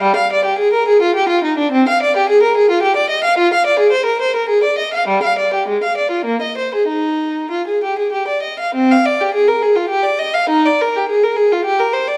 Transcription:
X:1
M:3/4
L:1/16
Q:1/4=104
K:Eb
V:1 name="Violin"
G, f d G A B A F G F E D | C f d G A B A F G d e f | F f d A c B c B A d e f | G, f d G A, f d F B, e c A |
E4 F A G A G d e f | [K:Cm] C f d G A B A F G d e f | E d B G A B A F G B c d |]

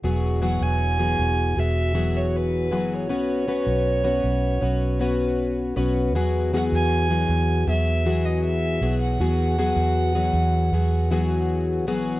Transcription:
X:1
M:4/4
L:1/16
Q:1/4=79
K:Elyd
V:1 name="Violin"
z2 f g4- g e3 c B3 c- | c12- c2 z2 | z2 f g4- g e3 d e3 f- | f12- f2 z2 |]
V:2 name="Twelve-string acoustic guitar"
[E,F,B,FG]2 [E,F,B,FG]3 [E,F,B,FG]3 [F,B,FG]2 [E,F,B,FG]4 [E,F,B,FG]2 | [B,CFB]2 [B,CFB]3 [B,CFB]3 [B,CFB]2 [B,CFB]4 [B,CFB]2 | [E,F,B,FG]2 [E,F,B,FG]3 [E,F,B,FG]3 [F,B,FG]2 [E,F,B,FG]4 [E,F,B,FG]2 | [E,F,B,FG]2 [E,F,B,FG]3 [E,F,B,FG]3 [F,B,FG]2 [E,F,B,FG]4 [E,F,B,FG]2 |]
V:3 name="Fingered electric bass" clef=bass
E,,,3 E,,,3 E,,,2 E,,,6 F,,,2 | B,,,3 B,,,3 B,,,2 B,,,6 B,,,2 | E,,3 E,,3 E,,2 E,,6 B,,,2 | E,,3 E,,3 E,,2 E,,6 A,,,2 |]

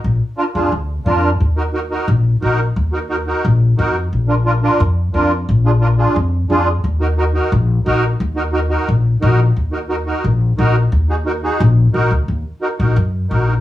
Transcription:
X:1
M:4/4
L:1/8
Q:1/4=176
K:Ebm
V:1 name="Accordion"
z2 [=DFB] [DFA] z2 [DFB] z | z [EGB] [EGB] [EGB] z2 [EGB] z | z [EGB] [EGB] [EGB] z2 [EGB] z | z [=DFB] [DFB] [DFB] z2 [DFB] z |
z [=DFA] [DFB] [DFA] z2 [DFA] z | z [EGB] [EGB] [EGB] z2 [EGB] z | z [EGB] [EGB] [EGB] z2 [EGB] z | z [EGB] [EGB] [EGB] z2 [EGB] z |
z [EGA] [EGB] [EGA] z2 [EGB] z | z2 [EGB] [EGB] z2 [EGB] z |]
V:2 name="Upright bass" clef=bass
B,,, z2 F,, =D,,2 F,,2 | E,,4 B,,,2 B,,,2 | E,,4 B,,,2 F,,2 | B,,,4 F,,2 F,,2 |
B,,,4 F,,2 F,,2 | E,,4 B,,,2 B,,,2 | E,,4 B,,,2 B,,,2 | E,,4 B,,,2 B,,,2 |
E,,4 B,,,2 B,,, =D,, | E,, z2 B,,, G,,2 B,,,2 |]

